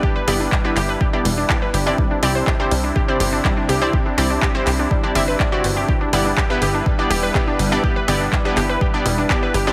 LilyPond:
<<
  \new Staff \with { instrumentName = "Synth arpeggio sound" } { \time 4/4 \key g \major \tempo 4 = 123 g'16 b'16 g'16 d'16 g16 d'16 g'16 b'16 g'16 d'16 g16 d'16 g'16 b'16 g'16 d'16 | g16 d'16 g'16 c''16 g'16 d'16 g16 d'16 g'16 c''16 g'16 d'16 g16 d'16 g'16 c''16 | g'16 d'16 g16 d'16 g'16 c''16 g'16 d'16 g16 d'16 d''16 b'16 d''16 fis'16 r16 g'16 | g'16 d'16 g16 d'16 g'16 b'16 g'16 d'16 g16 d'16 g'16 b'16 g'16 d'16 g16 d'16 |
g'16 b'16 g'16 d'16 g16 d'16 g'16 b'16 g'16 d'16 g16 d'16 g'16 b'16 g'16 d'16 | }
  \new Staff \with { instrumentName = "Synth pluck" } { \time 4/4 \key g \major <b e' g' d''>16 r16 <b e' g' d''>16 r8 <b e' g' b'>16 r8. <b e' g' d''>8 r16 <b e' g' d''>8. <c' e' g' d''>16~ | <c' e' g' d''>16 r16 <c' e' g' d''>16 r8 <c' e' g' c''>16 r8. <c' e' g' d''>8 r16 <c' e' g' d''>8. <c' e' g' d''>16~ | <c' e' g' d''>16 r16 <c' e' g' d''>16 r8 <c' e' g' c''>16 r8. <c' e' g' d''>16 <c' e' g' e''>8 r16 <c' e' g' d''>16 r8 | r8 <b e' g' d''>16 r8 <b e' g' b'>16 r8. <b e' g' d''>8 r16 <b e' g' d''>8. <b e' g' d''>16~ |
<b e' g' d''>16 r16 <b e' g' d''>16 r8 <b e' g' b'>16 r8. <b e' g' d''>8 r16 <b e' g' d''>8. <c' e' g' d''>16 | }
  \new Staff \with { instrumentName = "Supersaw synth" } { \time 4/4 \key g \major << { <g d' b'>1 | <c c'>1~ | <c c'>1 | <g b'>1~ |
<g b'>1 | } \\ { e'1~ | e'1~ | e'1~ | e'1~ |
e'1 | } >> }
  \new Staff \with { instrumentName = "Analog synth bass" } { \clef bass \time 4/4 \key g \major r8 g,,8 r8 g,,8 r8 e,,8 r8 g,,8 | r8 c,8 r8 c,8 r8 g,,8 r8 c,8 | r8 c,8 r8 c,8 r8 g,,8 r8 g,,8 | r8 g,,8 r8 g,,8 r8 e,,8 r8 g,,8 |
r8 g,,8 r8 g,,8 r8 e,,8 r8 g,,8 | }
  \new DrumStaff \with { instrumentName = "Drums" } \drummode { \time 4/4 bd8 hho8 <hc bd>8 <hc hho>8 bd8 hho8 <hc bd>8 hho8 | bd8 hho8 <hc bd>8 hho8 bd8 hho8 <hc bd>8 hho8 | bd8 hho8 <hc bd>8 <hc hho>8 bd8 hho8 <hc bd>8 hho8 | bd8 hho8 <hc bd>8 hho8 bd8 hho8 <hc bd>8 hho8 |
bd8 hho8 <hc bd>8 <hc hho>8 bd8 hho8 <hc bd>8 hho8 | }
>>